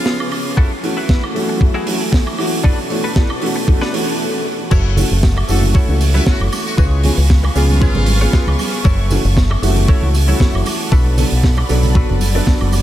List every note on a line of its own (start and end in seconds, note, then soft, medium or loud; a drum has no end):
0.00 0.55 C#3 medium
0.00 0.55 F3 medium
0.00 0.56 B3 medium
0.00 0.56 C#4 medium
0.00 2.60 C#4 medium
0.00 0.27 F4 medium
0.00 0.55 F4 medium
0.00 0.56 G#4 medium
0.00 0.55 B4 medium
0.05 muted clean electric guitar stroke medium
0.05 snare loud
0.19 muted clean electric guitar stroke soft
0.19 high woodblock medium
0.32 open hi-hat medium
0.32 high woodblock medium
0.57 2.62 F#3 medium
0.57 2.62 A3 medium
0.57 2.62 E4 medium
0.57 0.71 E4 medium
0.57 0.71 F#4 loud
0.57 0.71 A4 loud
0.57 kick loud
0.83 0.93 E3 medium
0.83 0.93 A3 medium
0.83 0.93 C#4 medium
0.83 0.93 F#4 medium
0.83 muted clean electric guitar stroke soft
0.83 open hi-hat medium
0.97 1.23 E4 medium
0.97 1.23 F#4 medium
0.97 1.23 B4 medium
1.09 kick loud
1.09 snare loud
1.24 high woodblock medium
1.34 1.59 E3 medium
1.34 1.59 A3 medium
1.34 1.59 C#4 medium
1.34 1.59 F#4 loud
1.34 open hi-hat medium
1.49 muted clean electric guitar stroke medium
1.61 muted clean electric guitar stroke soft
1.61 kick loud
1.74 1.87 E4 loud
1.74 1.87 F#4 medium
1.74 1.87 G#4 loud
1.86 1.96 E3 medium
1.86 1.96 A3 medium
1.86 1.96 C#4 medium
1.86 1.97 F#4 loud
1.86 open hi-hat loud
2.00 muted clean electric guitar stroke soft
2.12 muted clean electric guitar stroke loud
2.12 kick loud
2.12 snare loud
2.26 muted clean electric guitar stroke soft
2.26 high woodblock medium
2.38 2.62 E3 medium
2.38 2.62 A3 medium
2.38 2.62 C#4 medium
2.38 2.63 F#4 loud
2.38 open hi-hat loud
2.38 high woodblock medium
2.64 4.69 B2 medium
2.64 4.69 B3 medium
2.64 2.78 D4 loud
2.64 4.69 D4 medium
2.64 4.69 A4 medium
2.64 2.78 A4 medium
2.64 2.78 B4 loud
2.64 kick loud
2.90 3.00 E3 medium
2.90 3.00 A3 medium
2.90 3.00 C#4 medium
2.90 3.00 F#4 loud
2.90 muted clean electric guitar stroke soft
2.90 open hi-hat loud
3.04 3.30 D4 medium
3.04 3.30 A4 medium
3.04 3.30 B4 loud
3.16 kick loud
3.16 snare loud
3.30 high woodblock medium
3.41 3.51 E3 loud
3.41 3.52 A3 medium
3.41 3.52 C#4 medium
3.41 3.52 F#4 loud
3.41 open hi-hat loud
3.56 muted clean electric guitar stroke medium
3.67 3.77 E3 loud
3.67 3.77 A3 medium
3.67 3.78 C#4 medium
3.67 3.78 F#4 loud
3.67 muted clean electric guitar stroke soft
3.67 kick loud
3.81 3.93 D4 loud
3.81 3.93 A4 medium
3.81 3.94 B4 loud
3.81 snare soft
3.93 4.03 E3 loud
3.93 4.03 A3 medium
3.93 4.03 C#4 medium
3.93 4.04 F#4 loud
3.93 open hi-hat loud
4.07 muted clean electric guitar stroke soft
4.71 5.03 F#1 loud
4.71 5.04 E4 medium
4.71 5.04 F#4 loud
4.71 5.04 A4 medium
4.71 6.76 A4 medium
4.71 5.04 C#5 loud
4.71 6.76 E5 medium
4.71 6.76 F#5 medium
4.71 10.88 C#6 medium
4.71 kick loud
4.71 tambourine soft
4.71 crash loud
4.71 muted conga medium
4.97 5.06 E3 medium
4.97 5.07 A3 medium
4.97 5.07 C#4 medium
4.97 5.07 F#4 loud
4.97 open hi-hat loud
4.97 tambourine loud
4.97 low conga loud
5.11 5.41 F#1 loud
5.11 tambourine soft
5.23 kick loud
5.23 snare loud
5.23 tambourine soft
5.23 muted conga medium
5.37 muted clean electric guitar stroke medium
5.37 high woodblock medium
5.48 5.74 F#1 medium
5.48 5.85 E3 loud
5.48 5.85 A3 medium
5.48 5.85 C#4 medium
5.48 5.86 F#4 loud
5.48 5.65 A4 medium
5.48 muted clean electric guitar stroke soft
5.48 open hi-hat loud
5.48 tambourine medium
5.62 tambourine medium
5.62 muted conga medium
5.62 high conga medium
5.62 low conga medium
5.74 5.95 E4 medium
5.74 5.95 F#4 medium
5.74 5.95 A4 medium
5.74 5.95 C#5 medium
5.74 muted fingered electric bass stroke soft
5.74 kick loud
5.74 tambourine soft
5.89 6.19 C#2 medium
5.89 5.97 E3 medium
5.89 5.97 A3 medium
5.89 5.97 C#4 medium
5.89 5.97 F#4 medium
6.01 open hi-hat loud
6.01 tambourine loud
6.14 6.76 E3 medium
6.14 6.77 A3 medium
6.14 6.77 C#4 medium
6.14 6.46 E4 medium
6.14 6.46 F#4 medium
6.14 6.77 F#4 medium
6.14 6.46 A4 medium
6.14 6.24 B4 medium
6.14 6.46 C#5 medium
6.14 tambourine medium
6.14 muted conga medium
6.14 high conga medium
6.26 6.43 F#4 medium
6.26 kick loud
6.26 snare loud
6.26 tambourine soft
6.40 6.48 F#1 medium
6.40 high woodblock medium
6.52 open hi-hat loud
6.52 tambourine medium
6.52 muted conga medium
6.52 high woodblock medium
6.66 6.74 F#4 medium
6.66 tambourine medium
6.78 7.09 C#2 loud
6.78 7.11 F4 loud
6.78 6.87 F#4 medium
6.78 7.11 G#4 medium
6.78 8.83 B4 medium
6.78 7.11 B4 loud
6.78 7.11 C#5 loud
6.78 8.83 F5 medium
6.78 8.83 G#5 medium
6.78 kick loud
6.78 tambourine soft
7.03 7.13 F3 medium
7.03 7.14 B3 medium
7.03 7.14 C#4 medium
7.03 7.14 G#4 loud
7.03 open hi-hat loud
7.03 tambourine medium
7.03 muted conga medium
7.03 low conga loud
7.18 7.48 C#2 loud
7.18 tambourine medium
7.30 kick loud
7.30 snare loud
7.30 tambourine soft
7.44 muted clean electric guitar stroke medium
7.44 muted conga medium
7.44 high woodblock medium
7.55 7.87 C#2 medium
7.55 7.92 F3 medium
7.55 7.92 B3 medium
7.55 7.92 C#4 medium
7.55 7.64 F4 medium
7.55 7.93 G#4 loud
7.55 muted clean electric guitar stroke soft
7.55 open hi-hat medium
7.55 tambourine medium
7.70 7.77 F4 medium
7.70 tambourine medium
7.70 high conga medium
7.70 low conga medium
7.81 8.01 F4 medium
7.81 8.54 F4 loud
7.81 8.01 G#4 medium
7.81 8.01 B4 medium
7.81 8.01 C#5 medium
7.81 kick loud
7.81 tambourine soft
7.95 8.26 G#1 medium
7.95 8.04 F3 medium
7.95 8.04 B3 medium
7.95 8.04 C#4 medium
7.95 8.04 G#4 medium
7.95 muted conga medium
7.95 low conga medium
8.06 open hi-hat loud
8.06 tambourine medium
8.06 high conga medium
8.21 8.83 F3 medium
8.21 8.84 B3 medium
8.21 8.84 C#4 medium
8.21 8.53 F4 medium
8.21 8.53 G#4 medium
8.21 8.84 G#4 medium
8.21 8.53 B4 medium
8.21 8.53 C#5 medium
8.21 tambourine soft
8.33 kick loud
8.33 snare loud
8.33 tambourine soft
8.33 muted conga soft
8.47 8.54 C#2 medium
8.47 high woodblock medium
8.59 open hi-hat loud
8.59 tambourine medium
8.59 high conga medium
8.59 high woodblock medium
8.73 tambourine soft
8.84 9.16 F#1 loud
8.84 9.18 E4 medium
8.84 9.18 F#4 loud
8.84 12.82 A4 medium
8.84 9.18 A4 loud
8.84 9.18 C#5 loud
8.84 10.90 E5 medium
8.84 12.82 F#5 medium
8.84 kick loud
8.84 tambourine soft
8.84 muted conga medium
9.11 9.20 E3 medium
9.11 9.21 A3 medium
9.11 9.21 C#4 medium
9.11 9.21 F#4 loud
9.11 open hi-hat loud
9.11 tambourine medium
9.11 low conga loud
9.25 9.55 F#1 loud
9.25 tambourine soft
9.25 muted conga soft
9.37 kick loud
9.37 snare loud
9.37 tambourine soft
9.51 muted clean electric guitar stroke medium
9.51 high woodblock medium
9.62 9.88 F#1 medium
9.62 9.99 E3 loud
9.62 9.99 A3 medium
9.62 9.99 C#4 medium
9.62 10.00 F#4 loud
9.62 muted clean electric guitar stroke soft
9.62 open hi-hat loud
9.62 tambourine medium
9.76 tambourine soft
9.76 muted conga medium
9.76 high conga medium
9.76 low conga medium
9.88 10.08 E4 medium
9.88 10.08 F#4 medium
9.88 10.08 A4 medium
9.88 10.09 C#5 medium
9.88 muted fingered electric bass stroke soft
9.88 kick loud
9.88 tambourine soft
10.02 10.33 C#2 medium
10.02 10.11 E3 medium
10.02 10.11 A3 medium
10.02 10.11 C#4 medium
10.02 10.11 F#4 medium
10.14 open hi-hat loud
10.14 tambourine medium
10.14 muted conga soft
10.28 10.90 E3 medium
10.28 10.91 A3 medium
10.28 10.91 C#4 medium
10.28 10.60 E4 medium
10.28 10.60 F#4 medium
10.28 10.91 F#4 medium
10.28 10.60 A4 medium
10.28 10.60 C#5 medium
10.28 tambourine soft
10.28 high conga medium
10.40 kick loud
10.40 snare loud
10.40 tambourine soft
10.54 10.61 F#1 medium
10.54 high woodblock medium
10.66 open hi-hat loud
10.66 tambourine medium
10.66 muted conga medium
10.66 high woodblock medium
10.80 tambourine soft
10.92 11.23 B1 loud
10.92 11.25 D4 loud
10.92 11.25 F#4 medium
10.92 11.25 A4 medium
10.92 11.25 B4 loud
10.92 12.82 D5 medium
10.92 12.82 B5 medium
10.92 kick loud
10.92 tambourine soft
11.06 muted conga medium
11.17 11.27 F#3 medium
11.17 11.27 B3 medium
11.17 11.27 D4 medium
11.17 11.28 A4 loud
11.17 open hi-hat loud
11.17 tambourine loud
11.17 low conga loud
11.31 11.62 B1 loud
11.31 tambourine medium
11.43 kick loud
11.43 snare loud
11.43 tambourine soft
11.57 muted clean electric guitar stroke medium
11.57 muted conga medium
11.57 high woodblock medium
11.69 12.01 B1 medium
11.69 12.06 F#3 loud
11.69 12.06 B3 medium
11.69 12.06 D4 medium
11.69 12.06 A4 loud
11.69 muted clean electric guitar stroke soft
11.69 open hi-hat loud
11.69 tambourine medium
11.83 tambourine medium
11.83 high conga medium
11.83 low conga medium
11.95 12.15 D4 medium
11.95 12.15 F#4 medium
11.95 12.15 A4 medium
11.95 12.15 B4 medium
11.95 kick loud
11.95 tambourine soft
11.95 muted conga medium
12.09 12.40 F#1 medium
12.09 12.17 F#3 medium
12.09 12.17 B3 medium
12.09 12.18 D4 medium
12.09 12.18 A4 medium
12.09 low conga medium
12.20 open hi-hat loud
12.20 tambourine medium
12.20 high conga medium
12.34 12.82 F#3 medium
12.34 12.82 B3 medium
12.34 12.82 D4 medium
12.34 12.67 D4 medium
12.34 12.67 F#4 medium
12.34 12.67 A4 medium
12.34 12.82 B4 medium
12.34 12.67 D5 loud
12.34 tambourine soft
12.47 kick loud
12.47 snare loud
12.47 tambourine soft
12.47 muted conga medium
12.61 12.82 F#1 medium
12.61 high woodblock medium
12.72 open hi-hat loud
12.72 tambourine medium
12.72 high conga medium
12.72 high woodblock medium